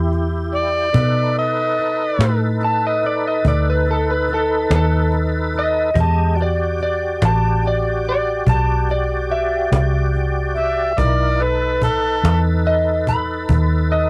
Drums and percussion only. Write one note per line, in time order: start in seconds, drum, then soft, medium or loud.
0.12 cajon slap soft
0.54 cajon slap soft
0.94 cajon bass medium
1.36 cajon slap soft
1.79 cajon slap soft
2.20 cajon slap medium
2.61 cajon slap soft
3.03 cajon slap soft
3.45 cajon bass medium
3.86 cajon slap soft
4.28 cajon slap soft
4.71 cajon slap medium
5.12 cajon slap soft
5.54 cajon slap soft
5.95 cajon bass medium
6.37 cajon slap soft
6.79 cajon slap soft
7.22 cajon slap medium
7.63 cajon slap soft
8.05 cajon slap soft
8.47 cajon bass medium
8.89 cajon slap soft
9.30 cajon slap soft
9.73 cajon slap medium
10.15 cajon slap soft
10.56 cajon slap soft
10.98 cajon bass medium
11.40 cajon slap soft
11.82 cajon bass medium
12.25 cajon slap medium
12.65 cajon slap soft
13.07 cajon bass medium
13.49 cajon bass medium
13.49 cajon slap soft
13.91 cajon slap soft